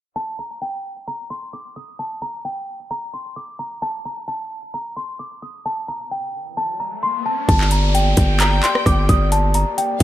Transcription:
0.16 celesta A5
0.39 celesta A#5
0.62 celesta G5
1.08 celesta A#5
1.30 celesta C6
1.53 celesta D6
1.76 celesta D#6
1.99 celesta A5
2.22 celesta A#5
2.45 celesta G5
2.91 celesta A#5
3.14 celesta C6
3.36 celesta D6
3.59 celesta A#5
3.82 celesta A5
4.05 celesta A#5
4.28 celesta A5
4.74 celesta A#5
4.97 celesta C6
5.19 celesta D6
5.42 celesta D#6
5.65 celesta A5, riser
5.88 celesta A#5
6.11 celesta G5
6.57 celesta A5
6.80 celesta A#5
7.03 celesta C6
7.26 celesta A5
7.49 808-style bass G1, glass harmonica A#3 G4 D5, celesta A5, kick, closed hi-hat, downlifter
7.61 clap
7.71 celesta A#5, closed hi-hat
7.95 celesta G5, closed hi-hat
8.17 808-style bass G1, violin section G5, kick, closed hi-hat
8.40 celesta A#5, clap, closed hi-hat
8.63 celesta C6, clap, closed hi-hat
8.75 cross-stick
8.86 808-style bass G1, celesta D6, kick, cross-stick, closed hi-hat
9.09 808-style bass G1, celesta D#6, kick, closed hi-hat
9.32 celesta A5, closed hi-hat
9.54 celesta A#5, closed hi-hat
9.78 celesta G5, closed hi-hat

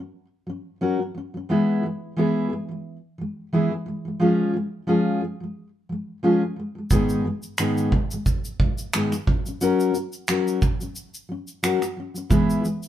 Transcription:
Already playing: steel-string acoustic guitar F#3
0.00 steel-string acoustic guitar C#4
0.47 steel-string acoustic guitar F#3 C#4
0.81 steel-string acoustic guitar F#3 C#4 F#4 A#4
0.99 steel-string acoustic guitar F#3
1.15 steel-string acoustic guitar F#3 C#4
1.34 steel-string acoustic guitar F#3 C#4
1.49 steel-string acoustic guitar E3 G#3 B3 E4 G#4
1.83 steel-string acoustic guitar E3
2.16 steel-string acoustic guitar E3 G#3 B3 E4 G#4
2.50 steel-string acoustic guitar E3 G#3
2.69 steel-string acoustic guitar E3 G#3
3.18 steel-string acoustic guitar E3 G#3
3.53 steel-string acoustic guitar E3 G#3 B3 E4 G#4
3.71 steel-string acoustic guitar E3 G#3
3.86 steel-string acoustic guitar E3 G#3
4.05 steel-string acoustic guitar E3 G#3
4.20 steel-string acoustic guitar F3 G#3 C#4 F4 G#4
4.54 steel-string acoustic guitar F3 G#3
4.87 steel-string acoustic guitar F3 G#3 C#4 F4 G#4
5.21 steel-string acoustic guitar F3 G#3
5.40 steel-string acoustic guitar F3 G#3
5.89 steel-string acoustic guitar F3 G#3
6.23 steel-string acoustic guitar F3 G#3 C#4 F4 G#4
6.41 steel-string acoustic guitar F3 G#3
6.56 steel-string acoustic guitar F3 G#3
6.75 steel-string acoustic guitar F3 G#3
6.90 steel-string acoustic guitar G#2 D#3 G#3 B3 D#4 G#4, kick, shaker
7.09 shaker
7.25 steel-string acoustic guitar G#2 D#3 G#3
7.43 shaker
7.58 steel-string acoustic guitar G#2 D#3 G#3 B3 D#4 G#4, finger snap, shaker
7.77 shaker
7.92 steel-string acoustic guitar G#2 D#3, kick
8.11 steel-string acoustic guitar G#2 D#3 G#3, shaker
8.26 kick, shaker
8.45 shaker
8.60 steel-string acoustic guitar G#2 D#3 G#3, kick
8.78 shaker
8.93 steel-string acoustic guitar G#2 D#3 G#3 B3 D#4 G#4, finger snap, shaker
9.12 steel-string acoustic guitar G#2 D#3 G#3, finger snap, shaker
9.27 steel-string acoustic guitar F#3 C#4, kick
9.45 steel-string acoustic guitar F#3 C#4, shaker
9.61 steel-string acoustic guitar F#3 C#4 F#4 A#4, shaker
9.80 shaker
9.93 steel-string acoustic guitar F#3, shaker
10.13 shaker
10.28 steel-string acoustic guitar F#3 C#4 F#4 A#4, finger snap, shaker
10.48 shaker
10.62 steel-string acoustic guitar F#3, kick, shaker
10.80 steel-string acoustic guitar F#3 C#4, shaker
10.96 shaker
11.14 shaker
11.29 steel-string acoustic guitar F#3 C#4
11.47 shaker
11.63 steel-string acoustic guitar F#3 C#4 F#4 A#4, finger snap, shaker
11.81 steel-string acoustic guitar F#3, finger snap, shaker
11.97 steel-string acoustic guitar F#3 C#4
12.14 steel-string acoustic guitar F#3 C#4, shaker
12.30 steel-string acoustic guitar E3 G#3 B3 E4 G#4, kick, shaker
12.50 shaker
12.63 steel-string acoustic guitar E3 G#3, shaker
12.83 shaker

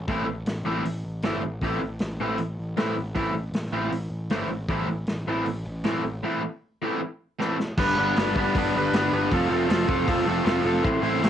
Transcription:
0.07 picked electric bass A1, overdriven electric guitar A2 E3 A3 C4 E4, kick, open hi-hat
0.25 picked electric bass A1
0.46 picked electric bass A1, snare, open hi-hat
0.65 picked electric bass A1, overdriven electric guitar A2 E3 A3 C4 E4
0.85 picked electric bass A1, open hi-hat
1.05 picked electric bass A1
1.22 picked electric bass G1, overdriven electric guitar A2 E3 A3 C4 E4, snare, open hi-hat
1.43 picked electric bass A1
1.61 picked electric bass A1, overdriven electric guitar A2 E3 A3 C4, kick, open hi-hat
1.65 overdriven electric guitar E4
1.81 picked electric bass A1
1.99 picked electric bass A1, snare, open hi-hat
2.20 picked electric bass A1, overdriven electric guitar A2 E3 A3 C4 E4
2.38 picked electric bass A1, open hi-hat
2.59 picked electric bass A1
2.77 picked electric bass A2, overdriven electric guitar A2 E3 A3 C4 E4, snare, open hi-hat
2.97 picked electric bass A1
3.15 picked electric bass A1, overdriven electric guitar A2 E3 A3 C4 E4, kick, open hi-hat
3.33 picked electric bass A1
3.52 picked electric bass A1, snare, open hi-hat
3.65 snare
3.71 picked electric bass A1, overdriven electric guitar A2 E3 A3 C4
3.75 overdriven electric guitar E4
3.92 picked electric bass A1, open hi-hat
4.11 picked electric bass A1
4.30 picked electric bass G1, overdriven electric guitar A2 E3 A3 C4 E4, snare, open hi-hat
4.47 picked electric bass A1
4.68 picked electric bass A1, overdriven electric guitar A2 E3 A3 C4 E4, kick, open hi-hat
4.87 picked electric bass A1
5.07 picked electric bass A1, snare, open hi-hat
5.27 picked electric bass A1, overdriven electric guitar A2 E3 A3 C4 E4
5.45 picked electric bass A1, open hi-hat
5.65 picked electric bass A1
5.84 picked electric bass A2, overdriven electric guitar A2 E3 A3 C4 E4, snare, open hi-hat
6.03 picked electric bass A1
6.24 overdriven electric guitar A2 E3 A3 C4 E4
6.82 overdriven electric guitar A2 E3 A3 C4 E4
7.40 overdriven electric guitar A2 E3 A3 C4 E4, snare
7.59 snare
7.78 picked electric bass G1, overdriven electric guitar G3 B3 D4 B4, kick, crash
7.96 picked electric bass G1, overdriven electric guitar G3 B3 D4 B4
8.16 picked electric bass G1, overdriven electric guitar G3 B3 D4 B4, snare, open hi-hat
8.36 overdriven electric guitar G3 B3 D4 B4, kick
8.55 picked electric bass G1, overdriven electric guitar G3 B3 D4 B4, kick, open hi-hat
8.75 picked electric bass G1, overdriven electric guitar G3 B3 D4 B4
8.92 picked electric bass G1, overdriven electric guitar G3 B3 D4, snare, open hi-hat
8.96 overdriven electric guitar B4
9.12 picked electric bass G1, overdriven electric guitar G3 B3 D4 B4
9.32 picked electric bass F1, overdriven electric guitar F3 A3 C4 F4 A4, kick, open hi-hat
9.49 picked electric bass F1, overdriven electric guitar F3 A3 C4 F4 A4
9.69 picked electric bass F1, overdriven electric guitar F3 A3 C4 F4 A4, snare, open hi-hat
9.87 picked electric bass F1, overdriven electric guitar F3 A3 C4 F4 A4, kick
10.08 picked electric bass F1, overdriven electric guitar F3 A3 C4 F4 A4, kick, open hi-hat
10.27 overdriven electric guitar F3 A3 C4 F4 A4
10.45 picked electric bass F1, overdriven electric guitar F3 A3 C4 F4 A4, snare, open hi-hat
10.63 picked electric bass F1, overdriven electric guitar F3 A3 C4 F4 A4
10.83 picked electric bass A1, overdriven electric guitar A2 A3 C4 E4 C5, kick, open hi-hat
11.01 picked electric bass A1, overdriven electric guitar A2 A3 C4 E4 C5
11.21 picked electric bass A1, overdriven electric guitar A2 A3 C4 E4 C5, snare, open hi-hat

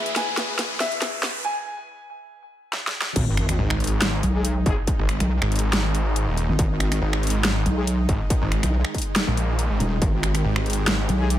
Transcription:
Already playing: supersaw synth E2 E3 G#4 B4, grand piano E5, riser
0.06 closed hi-hat
0.16 grand piano G#5, snare, closed hi-hat
0.37 snare, closed hi-hat
0.59 snare, closed hi-hat
0.80 grand piano E5, snare, closed hi-hat
0.92 closed hi-hat
1.02 snare, closed hi-hat
1.23 snare
1.45 grand piano G#5
2.73 snare
2.87 snare
3.02 snare
3.16 wobble bass G#1, supersaw synth D#3 G#3 D#4, kick, closed hi-hat, crash, sub drop
3.37 finger snap, closed hi-hat
3.49 finger snap, closed hi-hat
3.59 detuned saw bass G#1
3.70 finger snap
3.80 closed hi-hat
3.84 closed hi-hat
3.87 closed hi-hat
4.02 detuned saw bass G#1, snare, closed hi-hat
4.23 wobble bass B1, closed hi-hat
4.35 brass ensemble G#3 D#4 G#4
4.45 closed hi-hat
4.66 detuned saw bass G#1, brass ensemble G#3 D#4 G#4, kick, closed hi-hat
4.87 kick, closed hi-hat
4.99 detuned saw bass G#1
5.09 finger snap, closed hi-hat
5.20 wobble bass B1, finger snap, closed hi-hat
5.42 detuned saw bass G#1, finger snap
5.52 closed hi-hat
5.56 closed hi-hat
5.59 closed hi-hat
5.73 snare, closed hi-hat
5.95 closed hi-hat
6.16 closed hi-hat
6.27 detuned saw bass D#1
6.37 closed hi-hat
6.49 wobble bass G#1
6.59 wobble bass G#1, kick, closed hi-hat
6.80 finger snap, closed hi-hat
6.92 finger snap, closed hi-hat
7.02 detuned saw bass G#1
7.13 finger snap
7.23 closed hi-hat
7.27 closed hi-hat
7.30 closed hi-hat
7.45 detuned saw bass G#1, snare, closed hi-hat
7.66 wobble bass B1, closed hi-hat
7.77 brass ensemble G#3 D#4 G#4
7.87 closed hi-hat
8.09 detuned saw bass G#1, kick, closed hi-hat
8.30 kick, closed hi-hat
8.42 detuned saw bass G#1
8.52 finger snap, closed hi-hat
8.63 wobble bass B1, finger snap, closed hi-hat
8.85 finger snap
8.95 kick, closed hi-hat
8.98 closed hi-hat
9.02 closed hi-hat
9.16 snare, closed hi-hat
9.27 detuned saw bass A#1
9.37 closed hi-hat
9.59 closed hi-hat
9.70 detuned saw bass G#1
9.80 wobble bass D#1, closed hi-hat
10.02 wobble bass G#1, supersaw synth G4, kick, closed hi-hat
10.23 finger snap, closed hi-hat
10.35 finger snap, closed hi-hat
10.45 detuned saw bass G#1
10.56 finger snap
10.66 closed hi-hat
10.70 closed hi-hat
10.73 closed hi-hat
10.87 detuned saw bass G#1, snare, closed hi-hat
11.09 wobble bass B1, closed hi-hat
11.20 brass ensemble G#3 D#4 G#4
11.30 closed hi-hat

